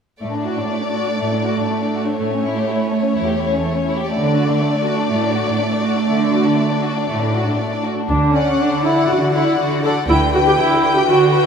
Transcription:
0.21 A2 A3 D5
0.33 D4
0.46 F#4
0.58 D4
0.71 A3
0.83 D4
0.94 F#4
1.08 D4
1.20 A2 A3
1.33 D4
1.45 F#4
1.58 D4
1.70 A3
1.83 D4
1.95 F#4
2.07 D4
2.18 A2 A3 C#5
2.32 C#4
2.45 E4
2.56 G4
2.68 E4
2.80 C#4
2.92 A3
3.04 C#4
3.16 E2 E4
3.27 G4
3.39 E4
3.51 C#4
3.63 A3
3.76 C#4
3.88 E4
3.99 G4
4.12 D3 A3 D5
4.24 D4
4.36 F#4
4.47 D4
4.61 A3
4.73 D4
4.85 F#4
4.98 D4
5.11 A2 A3
5.23 D4
5.35 F#4
5.47 D4
5.60 A3
5.72 D4
5.84 F#4
5.97 D4
6.09 D3 A3
6.21 D4
6.33 F#4
6.46 D4
6.58 A3
6.71 D4
6.83 F#4
6.95 D4
7.08 A2 A3
7.21 D4
7.34 F#4
7.47 D4
7.59 A3
7.72 D4
7.85 F#4
7.99 D4
8.09 D2 D3 D4
8.35 C#4 D5 F#5
8.60 D3 D4
8.85 E4 D5 F#5
9.10 D3 F#4
9.34 E4 D5 F#5
9.60 D3 F#4
9.84 A4 D5 F#5
10.08 D2 D3 E4 B4 G5
10.33 F#4 B4 G5
10.47 G4
10.58 D3 E4
10.82 B4 G5
10.95 G4
11.06 D3 F#4
11.31 B4 G5

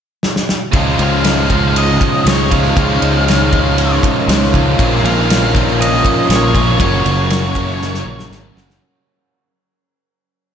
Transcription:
0.23 snare
0.36 snare
0.49 snare
0.72 C#2 C#3 F3 G#3 C#4 D#4 F4 G#4 C#5, kick, ride
0.99 C#2, ride
1.03 F5
1.24 snare, ride
1.49 C#3 F3 G#3 C#4, kick, ride
1.76 D#5, ride
2.01 kick, ride
2.24 C#2 C#3 F3 G#3 C#4 C#5, snare, ride
2.50 C#3 F3 G#3 C#4 F4 F5, kick, ride
2.75 C#2 C#3 F3 G#3 C#4 A#4, kick, ride
2.79 C#4 F4
3.02 C#2, ride
3.28 snare, ride
3.51 C#3 F3 G#3 C#4, kick, ride
3.78 ride
4.03 kick, ride
4.27 C#2 C#3 F3 G#3 C#4, snare, ride
4.53 C#3 F3 G#3 C#4 F4, kick, ride
4.77 A#1 A#2 F3 A#3 C#4 F4 C#5, kick, ride
5.04 A#1 F5, ride
5.30 snare, ride
5.53 A#2 F3 A#3 C#4, kick, ride
5.81 D#5, ride
6.05 kick, ride
6.28 A#1 A#2 F3 A#3 C#4 C#5, snare, ride
6.54 A#2 F3 A#3 C#4 F4, kick, ride
6.78 F#1 F#2 C#3 F#3 A#3 C#4 F#4 A#4 C#5, kick, ride
7.06 F#1, ride
7.30 snare, ride
7.54 F#2 C#3 F#3 A#3 C#4, kick, ride
7.81 snare
7.94 snare
8.05 A#1
8.19 snare
8.30 G#1 F#2 C#3 F#3 A#3 C#4, snare
8.55 F#1 F#2 C#3 F#3 A#3 C#4 F#4, snare
8.70 snare

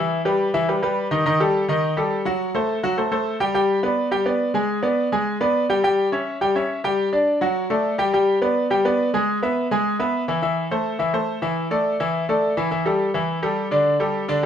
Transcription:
Already playing: E3 E4 E5
0.25 G3 G4 B4
0.54 E3 E4 E5
0.68 G3 G4 B4
0.82 G3 G4 B4
1.11 D#3 D#4 D#5
1.26 D#3 D#4 D#5
1.40 G3 G4 A4
1.69 D#3 D#4 D#5
1.97 G3 G4 A4
2.25 F#3 F#4 F#5
2.55 A3 A4 C5
2.83 F#3 F#4 F#5
2.97 A3 A4 C5
3.12 A3 A4 C5
3.40 G3 G4 G5
3.54 G3 G4 G5
3.83 B3 B4 D5
4.11 G3 G4 G5
4.26 B3 B4 D5
4.54 G#3 G#4 G#5
4.83 B3 B4 D5
5.12 G#3 G#4 G#5
5.41 B3 B4 D5
5.70 G3 G4 G5
5.84 G3 G4 G5
6.12 C#4 C#5 E5
6.41 G3 G4 G5
6.55 C#4 C#5 E5
6.84 G3 G4 G5
7.13 D4 D5
7.41 F#3 F#4 F#5
7.70 A3 A4 D5
7.98 G3 G4 G5
8.13 G3 G4 G5
8.42 B3 B4 D5
8.70 G3 G4 G5
8.85 B3 B4 D5
9.14 G#3 G#4 G#5
9.43 B3 B4 E5
9.71 G#3 G#4 G#5
9.99 B3 B4 E5
10.28 E3 E4 E5
10.42 E3 E4 E5
10.71 A3 A4 C5
10.99 E3 E4 E5
11.13 A3 A4 C5
11.42 E3 E4 E5
11.71 A3 A4 D5
12.00 E3 E4 E5
12.29 A3 A4 D5
12.57 E3 E4 E5
12.71 E3 E4 E5
12.86 G3 G4 A4
13.14 E3 E4 E5
13.42 G3 G4 A4
13.71 D3 D4 D5
14.00 G3 G4 A4
14.28 D3 D4 D5

